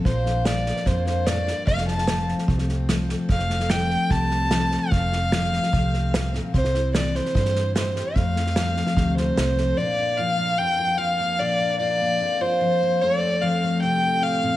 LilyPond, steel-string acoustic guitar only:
\new Staff \with { instrumentName = "Steel-string acoustic guitar" } { \time 4/4 \key f \major \tempo 4 = 148 << { bes8 d'4. bes8 d'4. | a8 c'4. a8 c'4 a'8 | a8 c'4. a8 c'4 a'8 | a8 c'4. a8 c'4. |
c'8 e'4. c'8 e'4 g'8 | a8 c'4. a8 c'4 a'8 | <bes d' f'>8 d'8 f'8 bes4 f'4 bes8 | <bes d' f'>8 d'8 f'8 bes4 f'4 bes8 |
<a c' a'>8 c'8 a'8 a4 a'4. | } \\ { bes,4 f4 f,4 a,8 g,8 | f,4 f4 c4 f4 | f,4 f4 c4 f4 | f,4 f4 c4 a,8 bes,8 |
c4 e4 g,4 e4 | f,4 f4 c4 f4 | bes,4 f4 f,4 f4 | bes,4 f4 f,4 f4 |
f,4 f4 c4 a,8 bes,8 | } >> }